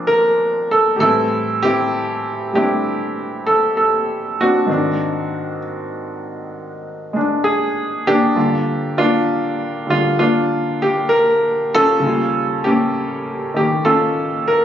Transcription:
Already playing: A#2 F3 G#3 A#3 C4 D4
0.07 A#4
0.71 A4
0.96 A2 E3 G4 A4
1.01 G3 C4 E4
1.63 C4 E4 G4
2.52 G3 A3 D4 G4
2.57 C4 E4
3.47 A4
3.77 A4
4.41 C4 D4 F#4
4.66 G#2 D#3 C4
4.71 D4
7.13 G#3 D4
7.44 G#4
8.07 A#3 D4 G4
8.35 G2 D3 A#3 F4
8.98 A#3 D4 F4
9.87 D3 G3 F4
10.19 A#3 D4 F4
10.82 G4
11.09 A#4
11.75 C#4 F4 A4
11.97 D#2 C#3
12.04 G3 F4
12.64 A#3 C#4 G4
13.54 D#3 A#3 G4
13.85 C#4 F4 A4
14.48 A#4

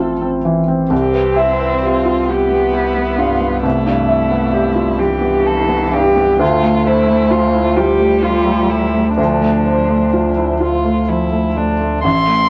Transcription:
Already playing: A1 A2 C4 E4 A4 E5
0.00 F4
0.22 C4
0.45 E3
0.68 C4
0.90 C2 C4 G4
1.13 B4
1.36 E4 E5
1.60 B4
1.83 F4 G4
2.05 F4
2.28 B3 G4
2.50 B3
2.73 E4 G4
2.96 B3
3.18 G2 F4
3.41 B3
3.63 C2 A3 E4
3.86 G2
4.09 E5
4.31 B3
4.53 G4
4.75 F4
4.97 E3 G4
5.21 B3
5.45 G4 A4
5.68 B3
5.92 G2 G4
6.16 B3
6.39 D2 A3 F4
6.63 A3
6.86 E4 C5
7.08 A3
7.31 F4
7.53 E4
7.77 G3 F4 G4
7.99 A3
8.22 F4
8.46 A3
8.70 A2 E4
8.94 A3
9.17 D2 F3 D4
9.41 A2
9.66 C5
9.89 A3
10.13 F4
10.37 E4
10.60 F4
10.85 A3
11.08 F3 E4
11.32 A3
11.56 A2 D4
11.80 A3
12.04 A1 E4 C6
12.27 A3

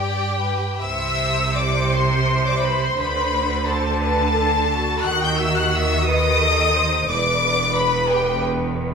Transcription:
Already playing: G2 G4 D5 G5
0.40 B4
0.81 C2 C3 C5 E5 E6
1.56 D5 D6
1.92 C5 C6
2.46 D5 D6
2.63 B4 B5
2.79 C5
2.84 C6
2.98 D2 D3 B4 B5
3.66 A4 A5
4.00 A4 B4 A5
4.34 A4
4.71 F#4
5.05 D#2 D#3 F#5 F#6
5.22 G5 G6
5.39 E5 E6
5.56 F#5 F#6
5.73 E5 E6
6.08 B4 D#5 D#6
6.41 A4
6.74 C5
7.08 E1 E2 B4 D5 D6
7.78 B4 B5
8.12 G4 G5

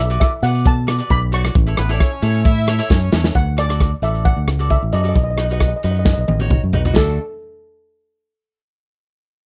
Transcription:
Already playing: B1 E5
0.10 F#4 B4 D5, closed hi-hat
0.20 E5, kick, cross-stick, closed hi-hat
0.43 B2 F#4 B4 D5 F#5, closed hi-hat
0.55 closed hi-hat
0.65 A5, kick, closed hi-hat
0.87 F#4 B4 D5, cross-stick, closed hi-hat
0.98 F#4 B4 D5, closed hi-hat
1.10 B1 B5, kick, closed hi-hat
1.32 F#4 B4 D5 C#6, closed hi-hat
1.45 cross-stick, closed hi-hat
1.55 A1, kick, closed hi-hat
1.67 E4 A4 C#5
1.77 A1 B3 B4, cross-stick, closed hi-hat
1.89 D4 E4 A4 C#5 D5, closed hi-hat
2.00 C#4 C#5, kick, cross-stick, closed hi-hat
2.22 A2 E4 A4 C#5, closed hi-hat
2.34 closed hi-hat
2.43 E4 E5, kick, closed hi-hat
2.67 E4 A4 C#5, cross-stick, closed hi-hat
2.78 E4 A4 C#5, closed hi-hat
2.89 F#2 C#4 C#5, kick, snare
3.12 E2 E4 A4 C#5, snare
3.24 snare
3.35 D2 F#5, kick, closed hi-hat
3.57 F#4 A4 D5, cross-stick, closed hi-hat
3.69 F#4 A4 D5, cross-stick, closed hi-hat
3.80 kick, cross-stick, closed hi-hat
4.02 A1 F#4 A4 D5 E5, closed hi-hat
4.15 closed hi-hat
4.25 F#5, kick, closed hi-hat
4.36 D2
4.47 C#2, cross-stick, closed hi-hat
4.59 F#4 A4 D5, closed hi-hat
4.70 E5, kick, closed hi-hat
4.82 A1
4.92 F#2 F#4 A4 D5 D#5, closed hi-hat
5.02 F#4 A4 D5 D#5, closed hi-hat
5.09 D#5
5.15 B1 D#5, kick, closed hi-hat
5.23 D#5
5.30 D#5
5.37 D#4 F#4 B4 D#5, cross-stick, closed hi-hat
5.45 D#5
5.49 D#4 F#4 B4 D#5, closed hi-hat
5.60 D#5, kick, cross-stick, closed hi-hat
5.68 D#5
5.76 D#5
5.83 F#2 D#4 F#4 B4 D#5, closed hi-hat
5.91 D#5, closed hi-hat
5.99 D#5
6.05 D#5, kick, snare
6.13 D#5
6.18 B1 D#5
6.28 A1 D#5, high tom
6.40 D#4 F#4 C#5, high tom
6.50 kick, mid tom
6.63 F#2
6.73 B1 D#4 F#4 B4, floor tom
6.85 D#4 F#4 B4, floor tom
6.96 D2 A3 D4 F#4 A4, kick, snare

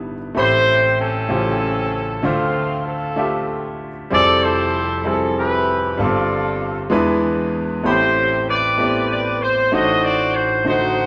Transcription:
Already playing: G1 G2 G3 B3 D4 D#4 E4 B4
0.35 A1 A2 A3 C4 E4 G4 C5 B5
1.00 C4 C#4 A4
1.29 A1 A2 C#3 A3 F4 G4 C5
2.22 D2 D3 A3 C4 D4 F4 C5 E5
2.87 C4 F4 A4
3.16 A3 D4 F4 G4 E5
4.10 F1 F2 F3 G3 C4 E4 G4 G#4 A4 D5
4.19 A4
4.44 E4 A4 C5
5.04 F3 G3 C4 E4 G#4 A4
5.13 A4
5.38 E4 G4 B4
5.97 G1 G2 G3 B3 D4 F4 A4 D5
6.04 C4
6.90 E2 E3 G#3 B3 D4 E4 B4
7.83 A1 A2 A3 B3 E4 G4 C5 B5
7.91 C4
8.49 G4 B4 D5
8.77 A3 B3 E4 G4 D5
8.85 C4
9.11 D5
9.42 C5
9.72 A1 A2 A3 D4 D#4 F#4 C5 D#5
10.04 D5
10.35 C5
10.64 D3 A3 D#4 F#4 C5
10.68 D#4

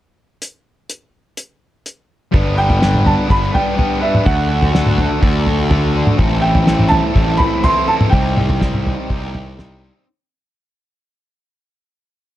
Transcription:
0.42 closed hi-hat
0.90 closed hi-hat
1.37 closed hi-hat
1.86 closed hi-hat
2.32 G1 G3 B3 D4 B4, kick, floor tom
2.55 B3 D4 B4 G5
2.70 floor tom
2.80 G3 B3 D4 B4, snare
2.94 mid tom
3.06 A5, floor tom
3.28 G1 G3 B3 D4 B4 B5, kick
3.51 B3 D4 B4 G5, floor tom
3.75 G3 B3 D4 B4, floor tom
4.01 B3 D4 B4 E5
4.15 mid tom
4.25 D2 D3 D4 F#4 A4 F#5, kick, floor tom
4.49 D4 F#4 A4
4.62 floor tom
4.72 D3 D4 F#4 A4, snare
4.86 mid tom
4.98 floor tom
5.21 D2 D3 D4 F#4 A4, kick
5.46 D4 F#4 A4, floor tom
5.69 D3 D4 F#4 A4, floor tom
5.93 D4 F#4 A4
6.07 mid tom
6.17 A1 A2 E3 C4 E4 A4, kick, floor tom
6.41 C4 E4 A4 G5
6.55 floor tom
6.64 E3 C4 E4 A4, snare
6.79 mid tom
6.89 A5, floor tom
7.14 A1 A2 E3 C4 E4 A4, kick
7.37 E4 A4 B5, floor tom
7.42 C4
7.62 E3 C4 E4 A4 C6, floor tom
7.87 C4 E4 A4 A5
8.01 mid tom
8.10 C2 C3 G3 C4 D#4 G5, kick, floor tom
8.14 G4
8.36 C4 D#4 G4, mid tom
8.50 floor tom
8.60 G3 C4 D#4 G4, kick, snare
8.74 mid tom
8.87 floor tom
9.09 C2 C3 G3 C4 D#4 G4, kick
9.33 C4 D#4 G4, floor tom
9.57 G3 C4 D#4 G4, snare, floor tom
9.82 C4 D#4 G4

